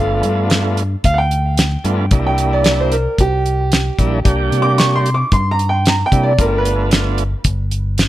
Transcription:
Already playing: G1 A3 B3 A4 F5
0.00 D4 F4
0.23 G2, closed hi-hat
0.50 snare, closed hi-hat
0.77 closed hi-hat
1.04 D2 F5, kick, closed hi-hat
1.14 F#5
1.18 G5
1.31 closed hi-hat
1.57 snare, closed hi-hat
1.84 G2 A3 B3 D4 F4, closed hi-hat
2.11 C2 G3 A#3 D4 E4, kick, closed hi-hat
2.27 G5
2.38 closed hi-hat
2.53 D5
2.64 snare, closed hi-hat
2.80 C5
2.92 A#4, closed hi-hat
3.18 C2 G4, kick, closed hi-hat
3.46 closed hi-hat
3.72 snare, closed hi-hat
3.98 A#1 G3 A#3 D4 E4, kick, closed hi-hat
4.24 C2 G3 A#3 D4 G4, kick, closed hi-hat
4.52 C3, closed hi-hat
4.62 D6
4.78 C#6, snare, closed hi-hat
4.96 C6
5.06 closed hi-hat
5.14 D6
5.32 G2 C6, kick, closed hi-hat
5.51 A#5
5.59 closed hi-hat
5.69 G5
5.86 A#5, snare, closed hi-hat
6.06 G5
6.12 C3 G3 A#3 D4 E4, kick, closed hi-hat
6.23 D5
6.38 G1 A3 B3 D4 F4 A#4, kick, closed hi-hat
6.58 B4
6.65 closed hi-hat
6.91 snare, closed hi-hat
7.18 closed hi-hat
7.44 G1, kick, closed hi-hat
7.71 closed hi-hat
7.98 snare, closed hi-hat

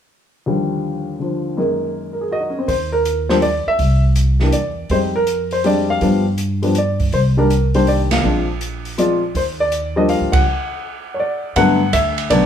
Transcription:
0.46 D#2 D3 F3 G3
1.19 D3 F3
1.57 F#2 D#3 G#3 A#3
2.13 A#4
2.21 G#4
2.32 F#4 D#5
2.41 D#4
2.50 C#4
2.59 C4
2.68 D#2 C5, kick, open hi-hat
2.92 A#4
3.05 closed hi-hat
3.29 F3 G3 A#3 D4 C5, snare
3.42 D5, open hi-hat
3.67 E5, muted upright bass stroke
3.79 C2, kick, open hi-hat
4.16 closed hi-hat
4.40 E3 G3 A#3 D4, snare
4.52 D5, closed hi-hat
4.89 F2 G3 G#3 C4 D#4 C5, kick, open hi-hat
5.16 A#4
5.27 closed hi-hat
5.51 C5, open hi-hat
5.64 G3 G#3 C4 D4 D5, open hi-hat
5.90 F5
6.01 G2 F3 G3 B3 D4, kick, open hi-hat
6.38 closed hi-hat
6.62 F3 G3 B3 D4, open hi-hat
6.75 D5, closed hi-hat
7.00 kick, open hi-hat
7.12 C2 C5, kick, open hi-hat
7.37 D#3 G3 A#3 D4 A#4
7.50 closed hi-hat
7.74 D#3 G3 A#3 D4 C5, open hi-hat
7.87 D5, open hi-hat
8.11 F5, snare, ride
8.23 A#1 F3 G#3 C4 D4
8.61 closed hi-hat
8.85 open hi-hat
8.98 F3 G#3 C4 F4 D5, closed hi-hat
9.35 D#2 C5, kick, open hi-hat
9.60 D5
9.72 closed hi-hat
9.96 F3 G3 A#3 D4 D#5
10.09 F5, open hi-hat
10.20 D2
10.32 C#2 F#5, kick, ride
11.14 C#5
11.20 D5
11.56 G2 D3 F#3 A3 B3 F#5, kick, ride
11.93 D2 E5, kick, hi-hat pedal, ride
12.18 ride
12.30 B1 D3 F#3 A3 B3 D5, kick, ride

